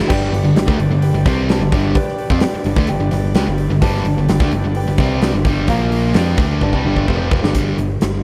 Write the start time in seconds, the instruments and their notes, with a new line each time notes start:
0.07 picked electric bass G1, distorted electric guitar G2 D3, tonewheel organ D4 G4 B4 D5, grand piano G4 B4 D5 G5, kick, crash
0.11 distorted electric guitar G3
0.32 picked electric bass G1, distorted electric guitar G2 D3, open hi-hat
0.43 picked electric bass G1, distorted electric guitar G2 D3
0.55 picked electric bass G1, distorted electric guitar G2 D3, grand piano G4 B4 D5 G5, snare, open hi-hat
0.66 picked electric bass D2, distorted electric guitar D3 A3, kick
0.78 picked electric bass G1, distorted electric guitar G2 D3, open hi-hat
0.89 picked electric bass G1, distorted electric guitar G2 D3
1.02 grand piano G4 B4 D5 G5, open hi-hat
1.13 picked electric bass G1, distorted electric guitar G2 D3
1.25 picked electric bass C2, distorted electric guitar C3 G3 C4, grand piano G4 B4 D5 G5, kick, snare, open hi-hat
1.48 grand piano G4 B4 D5 A5, snare, open hi-hat
1.60 picked electric bass G1, distorted electric guitar G2 D3
1.72 picked electric bass G1, distorted electric guitar G2 D3 G3, kick, open hi-hat
1.94 grand piano G4 B4 D5 G5, muted picked electric bass stroke, muted distorted electric guitar stroke, muted overdriven electric guitar stroke, kick, open hi-hat
2.08 snare
2.18 open hi-hat
2.30 picked electric bass F2, distorted electric guitar F3 C4, kick
2.40 grand piano G4 B4 D5 G5, muted distorted electric guitar stroke, muted picked electric bass stroke, muted overdriven electric guitar stroke, snare, open hi-hat
2.54 muted picked electric bass stroke, muted distorted electric guitar stroke, muted overdriven electric guitar stroke
2.64 picked electric bass G1, distorted electric guitar G2 D3, open hi-hat
2.76 picked electric bass D2, distorted electric guitar D3 A3, kick
2.87 picked electric bass G1, distorted electric guitar G2 D3, grand piano G4 B4 D5 G5, open hi-hat
3.00 picked electric bass G1, distorted electric guitar G2 D3
3.11 picked electric bass G1, distorted electric guitar G2 D3, grand piano G4 B4 D5 G5, snare, open hi-hat
3.35 picked electric bass C#2, distorted electric guitar C#3 G#3, grand piano G4 B4 D5 G5, snare, open hi-hat
3.47 picked electric bass G1, distorted electric guitar G2 D3
3.58 open hi-hat
3.70 picked electric bass G1, distorted electric guitar G2 D3
3.81 picked electric bass G1, distorted electric guitar G2 D3 G3, tonewheel organ D4 G4 B4 D5, grand piano G4 B4 D5 A5, kick, open hi-hat
3.95 snare
4.05 picked electric bass G1, distorted electric guitar G2 D3, open hi-hat
4.17 picked electric bass G1, distorted electric guitar G2 D3
4.29 picked electric bass G1, distorted electric guitar G2 D3, grand piano G4 B4 D5 G5, snare, open hi-hat
4.40 picked electric bass D2, distorted electric guitar D3 A3, kick
4.51 picked electric bass G1, distorted electric guitar G2 D3, open hi-hat
4.64 picked electric bass G1, distorted electric guitar G2 D3
4.75 grand piano G4 B4 D5 G5, open hi-hat
4.88 picked electric bass G1, distorted electric guitar G2 D3
4.98 picked electric bass C2, distorted electric guitar C3 G3 C4, grand piano G4 B4 D5 G5, kick, open hi-hat
5.22 grand piano G4 B4 D5 G5, snare, open hi-hat
5.34 picked electric bass G1, distorted electric guitar G2 D3
5.45 picked electric bass G1, distorted electric guitar G2 D3 G3, kick, open hi-hat
5.68 picked electric bass A#1, distorted electric guitar A#2 F3 A#3, tonewheel organ A#3 F4 A#4 F5, grand piano F4 A#4 F5 A#5, kick, open hi-hat
5.92 open hi-hat
6.14 picked electric bass F2, distorted electric guitar F3 C4 F4, tonewheel organ D4 G4 B4 D5, grand piano G4 B4 D5 G5, snare, open hi-hat
6.37 picked electric bass D2, distorted electric guitar D3 A3 D4, kick, open hi-hat
6.61 picked electric bass G1, distorted electric guitar G2 D3, grand piano G4 B4 D5 A5, kick
6.73 picked electric bass C2, distorted electric guitar C3 G3, kick
6.85 picked electric bass G1, distorted electric guitar G2 D3 G3, grand piano G4 B4 D5 G5
6.96 kick
7.07 picked electric bass F1, distorted electric guitar F2 C3 F3, grand piano G4 B4 D5 G5, kick
7.31 kick
7.43 picked electric bass G1, distorted electric guitar G2 D3, snare
7.55 picked electric bass G1, distorted electric guitar G2 D3 G3, kick, closed hi-hat
7.78 picked electric bass G1, distorted electric guitar G2 D3, closed hi-hat
8.01 picked electric bass G1, distorted electric guitar G2 D3, snare, closed hi-hat